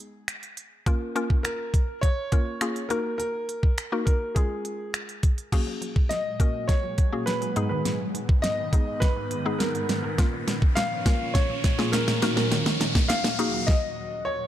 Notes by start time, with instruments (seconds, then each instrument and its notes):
0.28 finger snap, closed hi-hat
0.43 closed hi-hat
0.57 closed hi-hat
0.86 synth pluck A#3 C#4 F4 A#4, kick, closed hi-hat
1.15 synth pluck A#3 C#4 F4 A#4, closed hi-hat
1.30 kick
1.43 grand piano A#4, finger snap, closed hi-hat
1.74 kick, closed hi-hat
2.01 grand piano C#5, kick, closed hi-hat
2.32 synth pluck A#3 C#4 F4 A#4, kick, closed hi-hat
2.61 synth pluck A#3 C#4 F4 G#4, finger snap, closed hi-hat
2.76 closed hi-hat
2.89 synth pluck A#3 D#4 F#4 A#4, grand piano A#4, closed hi-hat
3.18 grand piano A#4, closed hi-hat
3.49 closed hi-hat
3.63 kick
3.78 finger snap, closed hi-hat
3.92 synth pluck A#3 D#4 F#4 A#4
4.06 grand piano A#4, kick, closed hi-hat
4.35 synth pluck G#3 C#4 F4 G#4, grand piano G#4, kick, closed hi-hat
4.65 closed hi-hat
4.94 finger snap, closed hi-hat
5.09 closed hi-hat
5.23 kick, closed hi-hat
5.38 closed hi-hat
5.52 ambient pad A#2 F#3 G#3, synth arpeggio sound F#3, synth pluck A#3 C#4 F#4 G#4, kick, snare, closed hi-hat, crash, riser
5.67 synth arpeggio sound F#3
5.82 synth arpeggio sound F#3, closed hi-hat
5.96 kick
6.09 synth arpeggio sound F#3, grand piano D#5, snare, closed hi-hat
6.40 synth pluck A#3 C#4 F#4 A#4, kick, closed hi-hat
6.68 synth arpeggio sound F#3, grand piano C#5, kick, snare, closed hi-hat
6.83 synth arpeggio sound F#3
6.98 synth arpeggio sound F#3, kick, closed hi-hat
7.12 synth pluck A#3 C#4 F#4 G#4
7.26 grand piano B4, snare, closed hi-hat
7.42 synth arpeggio sound F#3, closed hi-hat
7.56 synth arpeggio sound G#2, ambient pad G#2 D#3 B3, synth pluck G#3 B3 D#4 G#4, closed hi-hat
7.69 synth arpeggio sound D#3, grand piano B4
7.85 synth arpeggio sound G#2, snare, closed hi-hat
8.00 synth arpeggio sound G#2
8.14 synth arpeggio sound G#2, closed hi-hat
8.29 kick
8.42 synth arpeggio sound G#2, grand piano D#5, snare, closed hi-hat
8.73 synth pluck G#3 B3 D#4 G#4, kick, closed hi-hat
9.00 synth arpeggio sound G#2, grand piano B4, kick, snare, closed hi-hat
9.16 synth arpeggio sound G#2
9.31 synth arpeggio sound G#2, closed hi-hat
9.45 synth pluck G#3 B3 D#4 G#4
9.59 grand piano A#4, snare, closed hi-hat
9.75 synth arpeggio sound G#2, closed hi-hat
9.89 synth arpeggio sound G#2, snare, closed hi-hat
10.03 synth arpeggio sound D#3, grand piano A#4
10.18 synth arpeggio sound A#2, ambient pad A#2 F3 C#4, synth pluck A#3 C#4 F4 A#4, kick, snare, closed hi-hat
10.33 synth arpeggio sound A#2
10.48 synth arpeggio sound A#2, snare, closed hi-hat
10.62 kick
10.75 synth arpeggio sound A#2, grand piano F5, snare, clap, closed hi-hat
11.06 synth pluck A#3 C#4 F4 A#4, kick, snare, closed hi-hat
11.34 synth arpeggio sound A#2, grand piano C#5, kick, snare, closed hi-hat
11.50 synth arpeggio sound A#2
11.64 synth arpeggio sound A#2, kick, snare, closed hi-hat
11.78 synth pluck A#3 C#4 F4 G#4, snare
11.92 grand piano A#4, snare, clap, closed hi-hat
12.08 synth arpeggio sound A#2, snare, closed hi-hat
12.22 ambient pad D#2 A#2 F#3, synth arpeggio sound D#3, synth pluck A#3 D#4 F#4 A#4, snare, closed hi-hat
12.36 synth arpeggio sound F#3, grand piano A#4, snare
12.52 synth arpeggio sound D#3, snare, closed hi-hat
12.66 synth arpeggio sound D#3, snare
12.81 synth arpeggio sound D#3, snare, closed hi-hat
12.95 kick, snare
13.08 synth arpeggio sound D#3, grand piano F5, snare, clap, closed hi-hat
13.24 snare
13.39 synth pluck A#3 D#4 F#4 G#4, closed hi-hat
13.67 grand piano D#5, kick, snare
14.25 grand piano C#5